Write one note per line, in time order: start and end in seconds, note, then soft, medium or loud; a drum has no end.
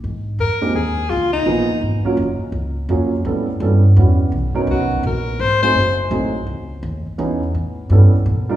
0.04 0.38 G#2 medium
0.39 0.73 F2 medium
0.39 0.73 A#4 medium
0.61 0.73 G#3 medium
0.61 0.73 A#3 medium
0.61 0.73 C4 medium
0.61 0.73 D#4 medium
0.61 0.74 G4 medium
0.74 1.09 D#2 medium
0.74 1.11 G#4 medium
1.10 1.45 C#2 medium
1.10 1.32 F4 loud
1.33 2.00 D#4 medium
1.46 1.67 A#1 medium
1.46 1.66 F3 medium
1.46 1.66 A#3 medium
1.46 1.66 B3 medium
1.46 1.67 D#4 medium
1.46 1.67 G#4 medium
1.69 muted upright bass stroke soft
1.81 2.03 G#1 medium
2.04 2.17 F#3 medium
2.04 2.17 A#3 medium
2.04 2.17 C#4 medium
2.04 2.17 F4 medium
2.04 2.17 A#4 medium
2.04 muted upright bass stroke soft
2.17 2.38 F#1 medium
2.39 muted upright bass stroke soft
2.52 2.88 C#2 medium
2.89 3.24 F2 medium
2.89 3.10 F#3 medium
2.89 3.10 A#3 medium
2.89 3.10 C#4 medium
2.89 3.10 F4 medium
2.89 3.10 G#4 medium
3.25 3.60 A2 medium
3.25 3.46 G3 medium
3.25 3.46 B3 medium
3.25 3.46 C#4 soft
3.25 3.46 E4 medium
3.25 3.46 A4 medium
3.60 3.95 G2 medium
3.60 3.81 G3 medium
3.60 3.82 B3 medium
3.60 3.82 C#4 medium
3.60 3.82 E4 medium
3.60 3.82 A4 medium
3.96 4.31 E2 medium
3.96 4.32 G3 soft
3.96 4.33 B3 medium
3.96 4.33 C#4 medium
3.96 4.33 E4 medium
3.96 4.33 F#4 medium
4.32 4.66 B1 medium
4.55 5.01 F#3 medium
4.55 5.01 B3 medium
4.55 5.01 C#4 medium
4.55 5.02 D#4 medium
4.55 5.01 A#4 medium
4.67 4.80 C#2 medium
4.67 5.03 F#4 medium
4.80 4.91 B1 soft
4.91 5.03 A#1 medium
5.03 5.38 A#1 medium
5.03 5.42 A#4 medium
5.39 5.74 G#1 medium
5.39 5.62 C5 loud
5.62 5.74 F#3 medium
5.62 5.74 A3 medium
5.62 5.75 C4 medium
5.62 5.75 D#4 medium
5.62 5.75 G#4 medium
5.62 5.96 C5 loud
5.75 6.10 F#1 medium
6.10 6.46 A1 loud
6.10 6.31 F#3 medium
6.10 6.32 A3 medium
6.10 6.32 C4 medium
6.10 6.32 D#4 medium
6.10 6.32 G#4 medium
6.47 6.82 C#2 medium
6.83 7.04 D#2 medium
7.06 muted upright bass stroke soft
7.18 7.53 E2 medium
7.18 7.39 E3 medium
7.18 7.39 B3 medium
7.18 7.39 C#4 medium
7.18 7.39 D#4 medium
7.18 7.39 G#4 medium
7.54 7.89 A2 medium
7.90 8.11 G2 medium
7.90 8.11 G3 medium
7.90 8.11 B3 medium
7.90 8.11 C#4 medium
7.90 8.12 E4 medium
7.90 8.12 A4 medium
8.13 muted upright bass stroke soft
8.26 8.56 A#2 medium
8.49 8.56 G3 medium
8.49 8.56 D4 medium
8.49 8.56 D#4 medium
8.49 8.56 F4 medium
8.49 8.56 A#4 medium